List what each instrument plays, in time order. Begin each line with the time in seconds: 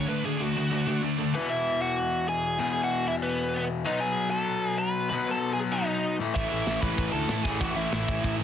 0.07 overdriven electric guitar D3 A3, distorted electric guitar D3 A3 D4, lead electric guitar B4
0.21 overdriven electric guitar D3 A3, distorted electric guitar D3 D4, lead electric guitar G#4
0.26 distorted electric guitar A3
0.37 distorted electric guitar D3 A3 D4, overdriven electric guitar D3 A3, lead electric guitar F#4
0.52 distorted electric guitar D3 D4
0.56 overdriven electric guitar D3 A3, distorted electric guitar A3
0.71 distorted electric guitar D3 A3 D4, overdriven electric guitar D3 A3
0.86 distorted electric guitar D3 A3 D4, overdriven electric guitar D3 A3
1.01 overdriven electric guitar D3 A3, distorted electric guitar D3 A3 D4
1.17 distorted electric guitar D3 A3 D4, overdriven electric guitar D3 A3
1.33 overdriven electric guitar E2 B2 E3, lead electric guitar B3 B4
1.49 lead electric guitar E4 E5
1.81 lead electric guitar F#4 F#5
2.28 lead electric guitar G#4 G#5
2.59 overdriven electric guitar E2 B2 E3, lead electric guitar G#4 G#5
2.83 lead electric guitar F#4 F#5
3.08 lead electric guitar E4 E5
3.23 lead electric guitar B3 B4
3.85 overdriven electric guitar B2 F#3 B3, lead electric guitar D#4 D#5
4.00 lead electric guitar G#4 G#5
4.30 lead electric guitar A4 A5
4.67 lead electric guitar G#5
4.78 lead electric guitar B4 B5
5.09 overdriven electric guitar B2 F#3 B3, lead electric guitar B4 B5
5.31 lead electric guitar A4 A5
5.53 lead electric guitar G#4 G#5
5.72 lead electric guitar D#4 D#5
6.20 overdriven electric guitar A2 E3 A3
6.35 picked electric bass A1, distorted electric guitar A2 E3 A3 C#4, lead electric guitar E4 E5, kick, crash
6.39 distorted electric guitar E4
6.49 picked electric bass A1, lead electric guitar E4 E5, crash
6.66 picked electric bass A1, snare, crash
6.81 picked electric bass A1, distorted electric guitar E3 A3 C#4 E4, lead electric guitar B4 B5, kick
6.86 distorted electric guitar A2
6.98 picked electric bass A1, kick, crash
7.12 picked electric bass D2, lead electric guitar A4 A5, crash
7.29 picked electric bass A2, distorted electric guitar A2 E3 A3 C#4 E4, snare, crash
7.43 picked electric bass A1, overdriven electric guitar A2 E3, distorted electric guitar A2 E3 A3, lead electric guitar G#4 G#5, kick, crash
7.47 overdriven electric guitar A3
7.60 picked electric bass A1, distorted electric guitar A2 E3 A3 C#4, lead electric guitar F#4 F#5, kick, crash
7.64 distorted electric guitar E4
7.75 picked electric bass A1, lead electric guitar E4 E5, crash
7.92 picked electric bass A1, snare, crash
8.08 picked electric bass A1, distorted electric guitar A2 E3 A3 C#4 E4, kick, crash
8.24 picked electric bass A1, kick, crash
8.39 picked electric bass A1, crash